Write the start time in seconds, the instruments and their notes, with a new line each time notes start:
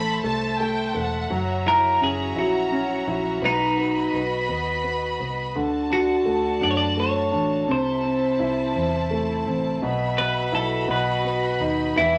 Already playing: fingered electric bass A1, grand piano A3, string section A4 C5 E5 A5, violin section B5
0.24 fingered electric bass C2, grand piano A3, violin section A5
0.60 grand piano A3, violin section G5
0.94 fingered electric bass E1, grand piano A3, violin section F#5
1.29 fingered electric bass F#1, grand piano F#3, string section F#4 C#5 A#5
1.66 grand piano E4, clean electric guitar A#4
2.01 fingered electric bass F#1, grand piano C#4, clean electric guitar G#4
2.36 fingered electric bass A#1, grand piano E4, clean electric guitar F#4
2.72 grand piano C#4
3.07 fingered electric bass A#1, grand piano E4
3.42 fingered electric bass B1, grand piano B3, clean electric guitar D#4, string section B4 D#5 B5
3.78 grand piano B3
4.13 fingered electric bass B1, grand piano B3
4.49 fingered electric bass D#2, grand piano B3
4.84 grand piano B3
5.20 fingered electric bass C2, grand piano B3
5.55 fingered electric bass D2, grand piano D3, string section D4 F#4 A4 A5
5.90 grand piano D4, clean electric guitar F#4
6.25 fingered electric bass D2, grand piano A3
6.61 fingered electric bass F#2, grand piano D4, clean electric guitar D5
6.71 clean electric guitar C#5
6.77 clean electric guitar D5
6.97 grand piano A3, clean electric guitar C#5
7.32 fingered electric bass A1, grand piano D4
7.68 fingered electric bass C2, grand piano C3, string section E4 C5 A5, clean electric guitar C5
8.03 grand piano C4
8.39 fingered electric bass C2, grand piano E4
8.75 fingered electric bass E2, grand piano C4
9.11 grand piano A3
9.47 fingered electric bass A1, grand piano C4
9.82 fingered electric bass B1, grand piano B2, string section F#4 B4 E5 B5
10.18 grand piano B3, clean electric guitar B4
10.52 fingered electric bass B1, grand piano E4, clean electric guitar A4
10.88 fingered electric bass B1, grand piano B2, string section B4 D#5, clean electric guitar B4
11.24 grand piano B3
11.60 fingered electric bass D#2, grand piano D#4
11.96 fingered electric bass E2, grand piano E3, clean electric guitar E4, string section G4 D5 E5